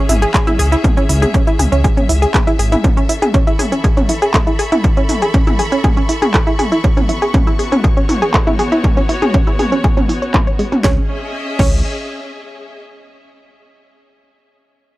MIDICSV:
0, 0, Header, 1, 5, 480
1, 0, Start_track
1, 0, Key_signature, 4, "minor"
1, 0, Tempo, 500000
1, 808, Time_signature, 4, 2, 24, 8
1, 14377, End_track
2, 0, Start_track
2, 0, Title_t, "String section"
2, 0, Program_c, 0, 48
2, 0, Note_on_c, 0, 61, 84
2, 0, Note_on_c, 0, 68, 95
2, 0, Note_on_c, 0, 76, 86
2, 2727, Note_on_c, 0, 69, 76
2, 2729, Note_off_c, 0, 68, 0
2, 3242, Note_on_c, 0, 85, 79
2, 3296, Note_on_c, 0, 83, 88
2, 3862, Note_off_c, 0, 61, 0
2, 6567, Note_on_c, 0, 59, 92
2, 6838, Note_on_c, 0, 66, 80
2, 7463, Note_off_c, 0, 83, 0
2, 7529, Note_off_c, 0, 69, 0
2, 7545, Note_on_c, 0, 73, 82
2, 7884, Note_off_c, 0, 76, 0
2, 10406, Note_on_c, 0, 61, 78
2, 10407, Note_off_c, 0, 73, 0
2, 10407, Note_off_c, 0, 85, 0
2, 10408, Note_off_c, 0, 59, 0
2, 10408, Note_off_c, 0, 66, 0
2, 10480, Note_on_c, 0, 68, 74
2, 10555, Note_on_c, 0, 75, 81
2, 10622, Note_on_c, 0, 76, 82
2, 12288, Note_off_c, 0, 68, 0
2, 12288, Note_off_c, 0, 76, 0
2, 12289, Note_off_c, 0, 61, 0
2, 12289, Note_off_c, 0, 75, 0
2, 14377, End_track
3, 0, Start_track
3, 0, Title_t, "Synth pluck"
3, 0, Program_c, 1, 84
3, 89, Note_on_c, 1, 64, 80
3, 143, Note_off_c, 1, 64, 0
3, 213, Note_on_c, 1, 68, 97
3, 243, Note_off_c, 1, 68, 0
3, 329, Note_on_c, 1, 68, 93
3, 361, Note_off_c, 1, 68, 0
3, 453, Note_on_c, 1, 64, 103
3, 483, Note_off_c, 1, 64, 0
3, 568, Note_on_c, 1, 68, 107
3, 601, Note_off_c, 1, 68, 0
3, 693, Note_on_c, 1, 64, 99
3, 723, Note_off_c, 1, 64, 0
3, 809, Note_on_c, 1, 61, 80
3, 863, Note_off_c, 1, 61, 0
3, 932, Note_on_c, 1, 61, 104
3, 983, Note_off_c, 1, 61, 0
3, 1048, Note_on_c, 1, 64, 81
3, 1103, Note_off_c, 1, 64, 0
3, 1172, Note_on_c, 1, 68, 101
3, 1203, Note_off_c, 1, 68, 0
3, 1289, Note_on_c, 1, 61, 104
3, 1370, Note_off_c, 1, 61, 0
3, 1413, Note_on_c, 1, 64, 97
3, 1488, Note_off_c, 1, 64, 0
3, 1529, Note_on_c, 1, 68, 98
3, 1561, Note_off_c, 1, 68, 0
3, 1653, Note_on_c, 1, 61, 104
3, 1703, Note_off_c, 1, 61, 0
3, 1768, Note_on_c, 1, 68, 101
3, 1850, Note_off_c, 1, 68, 0
3, 1893, Note_on_c, 1, 61, 98
3, 1943, Note_off_c, 1, 61, 0
3, 2008, Note_on_c, 1, 64, 80
3, 2063, Note_off_c, 1, 64, 0
3, 2132, Note_on_c, 1, 68, 104
3, 2163, Note_off_c, 1, 68, 0
3, 2248, Note_on_c, 1, 68, 88
3, 2281, Note_off_c, 1, 68, 0
3, 2373, Note_on_c, 1, 64, 103
3, 2403, Note_off_c, 1, 64, 0
3, 2489, Note_on_c, 1, 68, 99
3, 2521, Note_off_c, 1, 68, 0
3, 2612, Note_on_c, 1, 64, 100
3, 2643, Note_off_c, 1, 64, 0
3, 2727, Note_on_c, 1, 61, 77
3, 2782, Note_off_c, 1, 61, 0
3, 2852, Note_on_c, 1, 61, 101
3, 2903, Note_off_c, 1, 61, 0
3, 2968, Note_on_c, 1, 64, 83
3, 3023, Note_off_c, 1, 64, 0
3, 3092, Note_on_c, 1, 68, 95
3, 3123, Note_off_c, 1, 68, 0
3, 3207, Note_on_c, 1, 61, 104
3, 3289, Note_off_c, 1, 61, 0
3, 3333, Note_on_c, 1, 64, 95
3, 3409, Note_off_c, 1, 64, 0
3, 3447, Note_on_c, 1, 68, 100
3, 3480, Note_off_c, 1, 68, 0
3, 3572, Note_on_c, 1, 61, 100
3, 3623, Note_off_c, 1, 61, 0
3, 3687, Note_on_c, 1, 68, 102
3, 3769, Note_off_c, 1, 68, 0
3, 3812, Note_on_c, 1, 61, 97
3, 3863, Note_off_c, 1, 61, 0
3, 3928, Note_on_c, 1, 64, 82
3, 3983, Note_off_c, 1, 64, 0
3, 4053, Note_on_c, 1, 68, 103
3, 4083, Note_off_c, 1, 68, 0
3, 4167, Note_on_c, 1, 69, 88
3, 4200, Note_off_c, 1, 69, 0
3, 4292, Note_on_c, 1, 64, 95
3, 4322, Note_off_c, 1, 64, 0
3, 4408, Note_on_c, 1, 68, 108
3, 4441, Note_off_c, 1, 68, 0
3, 4532, Note_on_c, 1, 64, 101
3, 4563, Note_off_c, 1, 64, 0
3, 4648, Note_on_c, 1, 61, 78
3, 4703, Note_off_c, 1, 61, 0
3, 4773, Note_on_c, 1, 61, 106
3, 4823, Note_off_c, 1, 61, 0
3, 4889, Note_on_c, 1, 64, 82
3, 4943, Note_off_c, 1, 64, 0
3, 5014, Note_on_c, 1, 68, 92
3, 5044, Note_off_c, 1, 68, 0
3, 5128, Note_on_c, 1, 61, 102
3, 5210, Note_off_c, 1, 61, 0
3, 5253, Note_on_c, 1, 64, 100
3, 5328, Note_off_c, 1, 64, 0
3, 5367, Note_on_c, 1, 68, 98
3, 5400, Note_off_c, 1, 68, 0
3, 5491, Note_on_c, 1, 61, 102
3, 5543, Note_off_c, 1, 61, 0
3, 5607, Note_on_c, 1, 68, 103
3, 5689, Note_off_c, 1, 68, 0
3, 5732, Note_on_c, 1, 61, 94
3, 5783, Note_off_c, 1, 61, 0
3, 5847, Note_on_c, 1, 64, 79
3, 5902, Note_off_c, 1, 64, 0
3, 5971, Note_on_c, 1, 68, 99
3, 6002, Note_off_c, 1, 68, 0
3, 6087, Note_on_c, 1, 69, 89
3, 6120, Note_off_c, 1, 69, 0
3, 6210, Note_on_c, 1, 64, 100
3, 6242, Note_off_c, 1, 64, 0
3, 6326, Note_on_c, 1, 68, 103
3, 6360, Note_off_c, 1, 68, 0
3, 6451, Note_on_c, 1, 64, 98
3, 6482, Note_off_c, 1, 64, 0
3, 6567, Note_on_c, 1, 61, 81
3, 6622, Note_off_c, 1, 61, 0
3, 6691, Note_on_c, 1, 61, 103
3, 6742, Note_off_c, 1, 61, 0
3, 6806, Note_on_c, 1, 64, 81
3, 6862, Note_off_c, 1, 64, 0
3, 6932, Note_on_c, 1, 68, 98
3, 6963, Note_off_c, 1, 68, 0
3, 7047, Note_on_c, 1, 61, 106
3, 7129, Note_off_c, 1, 61, 0
3, 7172, Note_on_c, 1, 64, 105
3, 7248, Note_off_c, 1, 64, 0
3, 7287, Note_on_c, 1, 68, 95
3, 7320, Note_off_c, 1, 68, 0
3, 7411, Note_on_c, 1, 61, 109
3, 7462, Note_off_c, 1, 61, 0
3, 7525, Note_on_c, 1, 68, 104
3, 7608, Note_off_c, 1, 68, 0
3, 7651, Note_on_c, 1, 61, 101
3, 7702, Note_off_c, 1, 61, 0
3, 7766, Note_on_c, 1, 64, 79
3, 7821, Note_off_c, 1, 64, 0
3, 7891, Note_on_c, 1, 68, 103
3, 7922, Note_off_c, 1, 68, 0
3, 8006, Note_on_c, 1, 69, 91
3, 8040, Note_off_c, 1, 69, 0
3, 8131, Note_on_c, 1, 64, 106
3, 8162, Note_off_c, 1, 64, 0
3, 8247, Note_on_c, 1, 68, 106
3, 8280, Note_off_c, 1, 68, 0
3, 8372, Note_on_c, 1, 64, 100
3, 8403, Note_off_c, 1, 64, 0
3, 8487, Note_on_c, 1, 61, 79
3, 8542, Note_off_c, 1, 61, 0
3, 8612, Note_on_c, 1, 61, 105
3, 8663, Note_off_c, 1, 61, 0
3, 8728, Note_on_c, 1, 64, 81
3, 8782, Note_off_c, 1, 64, 0
3, 8853, Note_on_c, 1, 68, 100
3, 8883, Note_off_c, 1, 68, 0
3, 8968, Note_on_c, 1, 61, 99
3, 9050, Note_off_c, 1, 61, 0
3, 9092, Note_on_c, 1, 64, 98
3, 9168, Note_off_c, 1, 64, 0
3, 9208, Note_on_c, 1, 68, 98
3, 9241, Note_off_c, 1, 68, 0
3, 9332, Note_on_c, 1, 61, 107
3, 9383, Note_off_c, 1, 61, 0
3, 9448, Note_on_c, 1, 68, 110
3, 9530, Note_off_c, 1, 68, 0
3, 9572, Note_on_c, 1, 61, 97
3, 9623, Note_off_c, 1, 61, 0
3, 9687, Note_on_c, 1, 64, 80
3, 9769, Note_off_c, 1, 64, 0
3, 9812, Note_on_c, 1, 73, 78
3, 9843, Note_off_c, 1, 73, 0
3, 9928, Note_on_c, 1, 61, 111
3, 9982, Note_off_c, 1, 61, 0
3, 10053, Note_on_c, 1, 73, 99
3, 10083, Note_off_c, 1, 73, 0
3, 10168, Note_on_c, 1, 56, 103
3, 10201, Note_off_c, 1, 56, 0
3, 10293, Note_on_c, 1, 61, 96
3, 10323, Note_off_c, 1, 61, 0
3, 10408, Note_on_c, 1, 61, 89
3, 10546, Note_off_c, 1, 61, 0
3, 11129, Note_on_c, 1, 61, 87
3, 11352, Note_off_c, 1, 61, 0
3, 14377, End_track
4, 0, Start_track
4, 0, Title_t, "Detuned saw bass"
4, 0, Program_c, 2, 39
4, 88, Note_on_c, 2, 32, 78
4, 246, Note_off_c, 2, 32, 0
4, 568, Note_on_c, 2, 37, 89
4, 726, Note_off_c, 2, 37, 0
4, 1048, Note_on_c, 2, 37, 105
4, 1207, Note_off_c, 2, 37, 0
4, 1529, Note_on_c, 2, 37, 92
4, 1609, Note_off_c, 2, 37, 0
4, 1653, Note_on_c, 2, 37, 108
4, 1805, Note_off_c, 2, 37, 0
4, 2009, Note_on_c, 2, 37, 88
4, 2167, Note_off_c, 2, 37, 0
4, 2489, Note_on_c, 2, 32, 88
4, 2647, Note_off_c, 2, 32, 0
4, 10408, Note_on_c, 2, 37, 101
4, 10546, Note_off_c, 2, 37, 0
4, 11128, Note_on_c, 2, 37, 92
4, 11352, Note_off_c, 2, 37, 0
4, 14377, End_track
5, 0, Start_track
5, 0, Title_t, "Drums"
5, 89, Note_on_c, 9, 46, 106
5, 89, Note_on_c, 9, 47, 92
5, 185, Note_off_c, 9, 46, 0
5, 185, Note_off_c, 9, 47, 0
5, 214, Note_on_c, 9, 42, 30
5, 310, Note_off_c, 9, 42, 0
5, 329, Note_on_c, 9, 36, 121
5, 329, Note_on_c, 9, 39, 125
5, 329, Note_on_c, 9, 42, 42
5, 425, Note_off_c, 9, 36, 0
5, 425, Note_off_c, 9, 39, 0
5, 425, Note_off_c, 9, 42, 0
5, 453, Note_on_c, 9, 42, 21
5, 453, Note_on_c, 9, 47, 83
5, 549, Note_off_c, 9, 42, 0
5, 549, Note_off_c, 9, 47, 0
5, 569, Note_on_c, 9, 46, 100
5, 665, Note_off_c, 9, 46, 0
5, 694, Note_on_c, 9, 42, 32
5, 790, Note_off_c, 9, 42, 0
5, 809, Note_on_c, 9, 36, 122
5, 810, Note_on_c, 9, 42, 44
5, 810, Note_on_c, 9, 47, 96
5, 905, Note_off_c, 9, 36, 0
5, 906, Note_off_c, 9, 42, 0
5, 906, Note_off_c, 9, 47, 0
5, 934, Note_on_c, 9, 42, 21
5, 1030, Note_off_c, 9, 42, 0
5, 1050, Note_on_c, 9, 46, 111
5, 1146, Note_off_c, 9, 46, 0
5, 1175, Note_on_c, 9, 42, 32
5, 1175, Note_on_c, 9, 47, 88
5, 1271, Note_off_c, 9, 42, 0
5, 1271, Note_off_c, 9, 47, 0
5, 1289, Note_on_c, 9, 36, 116
5, 1290, Note_on_c, 9, 42, 40
5, 1385, Note_off_c, 9, 36, 0
5, 1386, Note_off_c, 9, 42, 0
5, 1414, Note_on_c, 9, 42, 22
5, 1510, Note_off_c, 9, 42, 0
5, 1530, Note_on_c, 9, 46, 97
5, 1530, Note_on_c, 9, 47, 94
5, 1626, Note_off_c, 9, 46, 0
5, 1626, Note_off_c, 9, 47, 0
5, 1655, Note_on_c, 9, 42, 32
5, 1751, Note_off_c, 9, 42, 0
5, 1769, Note_on_c, 9, 36, 115
5, 1770, Note_on_c, 9, 42, 44
5, 1865, Note_off_c, 9, 36, 0
5, 1866, Note_off_c, 9, 42, 0
5, 1894, Note_on_c, 9, 42, 20
5, 1894, Note_on_c, 9, 47, 85
5, 1990, Note_off_c, 9, 42, 0
5, 1990, Note_off_c, 9, 47, 0
5, 2010, Note_on_c, 9, 46, 106
5, 2106, Note_off_c, 9, 46, 0
5, 2135, Note_on_c, 9, 42, 32
5, 2231, Note_off_c, 9, 42, 0
5, 2249, Note_on_c, 9, 36, 120
5, 2251, Note_on_c, 9, 39, 112
5, 2251, Note_on_c, 9, 42, 43
5, 2251, Note_on_c, 9, 47, 90
5, 2345, Note_off_c, 9, 36, 0
5, 2347, Note_off_c, 9, 39, 0
5, 2347, Note_off_c, 9, 42, 0
5, 2347, Note_off_c, 9, 47, 0
5, 2374, Note_on_c, 9, 42, 21
5, 2470, Note_off_c, 9, 42, 0
5, 2489, Note_on_c, 9, 46, 98
5, 2585, Note_off_c, 9, 46, 0
5, 2614, Note_on_c, 9, 42, 30
5, 2614, Note_on_c, 9, 47, 86
5, 2710, Note_off_c, 9, 42, 0
5, 2710, Note_off_c, 9, 47, 0
5, 2728, Note_on_c, 9, 36, 116
5, 2729, Note_on_c, 9, 42, 44
5, 2729, Note_on_c, 9, 47, 97
5, 2824, Note_off_c, 9, 36, 0
5, 2825, Note_off_c, 9, 42, 0
5, 2825, Note_off_c, 9, 47, 0
5, 2854, Note_on_c, 9, 42, 22
5, 2950, Note_off_c, 9, 42, 0
5, 2969, Note_on_c, 9, 46, 103
5, 3065, Note_off_c, 9, 46, 0
5, 3094, Note_on_c, 9, 42, 32
5, 3094, Note_on_c, 9, 47, 92
5, 3190, Note_off_c, 9, 42, 0
5, 3190, Note_off_c, 9, 47, 0
5, 3208, Note_on_c, 9, 36, 124
5, 3209, Note_on_c, 9, 42, 41
5, 3304, Note_off_c, 9, 36, 0
5, 3305, Note_off_c, 9, 42, 0
5, 3334, Note_on_c, 9, 42, 23
5, 3430, Note_off_c, 9, 42, 0
5, 3449, Note_on_c, 9, 46, 92
5, 3449, Note_on_c, 9, 47, 89
5, 3545, Note_off_c, 9, 46, 0
5, 3545, Note_off_c, 9, 47, 0
5, 3574, Note_on_c, 9, 42, 35
5, 3670, Note_off_c, 9, 42, 0
5, 3688, Note_on_c, 9, 36, 108
5, 3688, Note_on_c, 9, 42, 46
5, 3784, Note_off_c, 9, 36, 0
5, 3784, Note_off_c, 9, 42, 0
5, 3813, Note_on_c, 9, 42, 21
5, 3813, Note_on_c, 9, 47, 94
5, 3909, Note_off_c, 9, 42, 0
5, 3909, Note_off_c, 9, 47, 0
5, 3927, Note_on_c, 9, 46, 108
5, 4023, Note_off_c, 9, 46, 0
5, 4052, Note_on_c, 9, 42, 32
5, 4148, Note_off_c, 9, 42, 0
5, 4167, Note_on_c, 9, 36, 115
5, 4168, Note_on_c, 9, 39, 113
5, 4168, Note_on_c, 9, 42, 44
5, 4168, Note_on_c, 9, 47, 90
5, 4263, Note_off_c, 9, 36, 0
5, 4264, Note_off_c, 9, 39, 0
5, 4264, Note_off_c, 9, 42, 0
5, 4264, Note_off_c, 9, 47, 0
5, 4292, Note_on_c, 9, 42, 21
5, 4388, Note_off_c, 9, 42, 0
5, 4407, Note_on_c, 9, 46, 100
5, 4503, Note_off_c, 9, 46, 0
5, 4532, Note_on_c, 9, 42, 32
5, 4532, Note_on_c, 9, 47, 93
5, 4628, Note_off_c, 9, 42, 0
5, 4628, Note_off_c, 9, 47, 0
5, 4647, Note_on_c, 9, 36, 117
5, 4648, Note_on_c, 9, 42, 45
5, 4743, Note_off_c, 9, 36, 0
5, 4744, Note_off_c, 9, 42, 0
5, 4772, Note_on_c, 9, 42, 23
5, 4868, Note_off_c, 9, 42, 0
5, 4886, Note_on_c, 9, 46, 106
5, 4886, Note_on_c, 9, 47, 95
5, 4982, Note_off_c, 9, 46, 0
5, 4982, Note_off_c, 9, 47, 0
5, 5012, Note_on_c, 9, 42, 34
5, 5108, Note_off_c, 9, 42, 0
5, 5127, Note_on_c, 9, 36, 117
5, 5128, Note_on_c, 9, 42, 41
5, 5223, Note_off_c, 9, 36, 0
5, 5224, Note_off_c, 9, 42, 0
5, 5253, Note_on_c, 9, 42, 24
5, 5253, Note_on_c, 9, 47, 99
5, 5349, Note_off_c, 9, 42, 0
5, 5349, Note_off_c, 9, 47, 0
5, 5367, Note_on_c, 9, 46, 93
5, 5463, Note_off_c, 9, 46, 0
5, 5492, Note_on_c, 9, 42, 34
5, 5588, Note_off_c, 9, 42, 0
5, 5607, Note_on_c, 9, 36, 107
5, 5608, Note_on_c, 9, 42, 43
5, 5608, Note_on_c, 9, 47, 100
5, 5703, Note_off_c, 9, 36, 0
5, 5704, Note_off_c, 9, 42, 0
5, 5704, Note_off_c, 9, 47, 0
5, 5732, Note_on_c, 9, 42, 21
5, 5828, Note_off_c, 9, 42, 0
5, 5846, Note_on_c, 9, 46, 100
5, 5942, Note_off_c, 9, 46, 0
5, 5972, Note_on_c, 9, 42, 32
5, 5972, Note_on_c, 9, 47, 93
5, 6068, Note_off_c, 9, 42, 0
5, 6068, Note_off_c, 9, 47, 0
5, 6087, Note_on_c, 9, 36, 110
5, 6088, Note_on_c, 9, 39, 112
5, 6088, Note_on_c, 9, 42, 44
5, 6183, Note_off_c, 9, 36, 0
5, 6184, Note_off_c, 9, 39, 0
5, 6184, Note_off_c, 9, 42, 0
5, 6212, Note_on_c, 9, 42, 20
5, 6308, Note_off_c, 9, 42, 0
5, 6327, Note_on_c, 9, 46, 92
5, 6327, Note_on_c, 9, 47, 99
5, 6423, Note_off_c, 9, 46, 0
5, 6423, Note_off_c, 9, 47, 0
5, 6452, Note_on_c, 9, 42, 32
5, 6548, Note_off_c, 9, 42, 0
5, 6567, Note_on_c, 9, 36, 116
5, 6567, Note_on_c, 9, 42, 48
5, 6663, Note_off_c, 9, 36, 0
5, 6663, Note_off_c, 9, 42, 0
5, 6692, Note_on_c, 9, 42, 24
5, 6692, Note_on_c, 9, 47, 94
5, 6788, Note_off_c, 9, 42, 0
5, 6788, Note_off_c, 9, 47, 0
5, 6807, Note_on_c, 9, 46, 99
5, 6903, Note_off_c, 9, 46, 0
5, 6933, Note_on_c, 9, 42, 34
5, 7029, Note_off_c, 9, 42, 0
5, 7048, Note_on_c, 9, 36, 113
5, 7049, Note_on_c, 9, 42, 45
5, 7049, Note_on_c, 9, 47, 93
5, 7144, Note_off_c, 9, 36, 0
5, 7145, Note_off_c, 9, 42, 0
5, 7145, Note_off_c, 9, 47, 0
5, 7173, Note_on_c, 9, 42, 23
5, 7269, Note_off_c, 9, 42, 0
5, 7289, Note_on_c, 9, 46, 88
5, 7385, Note_off_c, 9, 46, 0
5, 7414, Note_on_c, 9, 42, 35
5, 7414, Note_on_c, 9, 47, 99
5, 7510, Note_off_c, 9, 42, 0
5, 7510, Note_off_c, 9, 47, 0
5, 7528, Note_on_c, 9, 36, 110
5, 7529, Note_on_c, 9, 42, 46
5, 7624, Note_off_c, 9, 36, 0
5, 7625, Note_off_c, 9, 42, 0
5, 7653, Note_on_c, 9, 42, 22
5, 7749, Note_off_c, 9, 42, 0
5, 7767, Note_on_c, 9, 46, 101
5, 7767, Note_on_c, 9, 47, 102
5, 7863, Note_off_c, 9, 46, 0
5, 7863, Note_off_c, 9, 47, 0
5, 7892, Note_on_c, 9, 42, 35
5, 7988, Note_off_c, 9, 42, 0
5, 8008, Note_on_c, 9, 36, 109
5, 8008, Note_on_c, 9, 39, 109
5, 8008, Note_on_c, 9, 42, 48
5, 8104, Note_off_c, 9, 36, 0
5, 8104, Note_off_c, 9, 39, 0
5, 8104, Note_off_c, 9, 42, 0
5, 8133, Note_on_c, 9, 42, 23
5, 8133, Note_on_c, 9, 47, 95
5, 8229, Note_off_c, 9, 42, 0
5, 8229, Note_off_c, 9, 47, 0
5, 8247, Note_on_c, 9, 46, 90
5, 8343, Note_off_c, 9, 46, 0
5, 8372, Note_on_c, 9, 42, 34
5, 8468, Note_off_c, 9, 42, 0
5, 8488, Note_on_c, 9, 36, 113
5, 8488, Note_on_c, 9, 42, 49
5, 8488, Note_on_c, 9, 47, 104
5, 8584, Note_off_c, 9, 36, 0
5, 8584, Note_off_c, 9, 42, 0
5, 8584, Note_off_c, 9, 47, 0
5, 8612, Note_on_c, 9, 42, 24
5, 8708, Note_off_c, 9, 42, 0
5, 8728, Note_on_c, 9, 46, 105
5, 8824, Note_off_c, 9, 46, 0
5, 8853, Note_on_c, 9, 42, 35
5, 8853, Note_on_c, 9, 47, 97
5, 8949, Note_off_c, 9, 42, 0
5, 8949, Note_off_c, 9, 47, 0
5, 8968, Note_on_c, 9, 36, 113
5, 8968, Note_on_c, 9, 42, 47
5, 9064, Note_off_c, 9, 36, 0
5, 9064, Note_off_c, 9, 42, 0
5, 9093, Note_on_c, 9, 42, 24
5, 9189, Note_off_c, 9, 42, 0
5, 9209, Note_on_c, 9, 46, 92
5, 9209, Note_on_c, 9, 47, 92
5, 9305, Note_off_c, 9, 46, 0
5, 9305, Note_off_c, 9, 47, 0
5, 9333, Note_on_c, 9, 42, 39
5, 9429, Note_off_c, 9, 42, 0
5, 9448, Note_on_c, 9, 36, 111
5, 9449, Note_on_c, 9, 42, 46
5, 9544, Note_off_c, 9, 36, 0
5, 9545, Note_off_c, 9, 42, 0
5, 9574, Note_on_c, 9, 42, 24
5, 9574, Note_on_c, 9, 47, 92
5, 9670, Note_off_c, 9, 42, 0
5, 9670, Note_off_c, 9, 47, 0
5, 9689, Note_on_c, 9, 46, 106
5, 9785, Note_off_c, 9, 46, 0
5, 9814, Note_on_c, 9, 42, 34
5, 9910, Note_off_c, 9, 42, 0
5, 9928, Note_on_c, 9, 36, 110
5, 9929, Note_on_c, 9, 39, 115
5, 9929, Note_on_c, 9, 42, 49
5, 9929, Note_on_c, 9, 47, 92
5, 10024, Note_off_c, 9, 36, 0
5, 10025, Note_off_c, 9, 39, 0
5, 10025, Note_off_c, 9, 42, 0
5, 10025, Note_off_c, 9, 47, 0
5, 10054, Note_on_c, 9, 42, 23
5, 10150, Note_off_c, 9, 42, 0
5, 10169, Note_on_c, 9, 46, 93
5, 10265, Note_off_c, 9, 46, 0
5, 10294, Note_on_c, 9, 42, 34
5, 10294, Note_on_c, 9, 47, 91
5, 10390, Note_off_c, 9, 42, 0
5, 10390, Note_off_c, 9, 47, 0
5, 10408, Note_on_c, 9, 36, 114
5, 10409, Note_on_c, 9, 38, 86
5, 10504, Note_off_c, 9, 36, 0
5, 10505, Note_off_c, 9, 38, 0
5, 11129, Note_on_c, 9, 36, 114
5, 11129, Note_on_c, 9, 49, 87
5, 11225, Note_off_c, 9, 36, 0
5, 11225, Note_off_c, 9, 49, 0
5, 14377, End_track
0, 0, End_of_file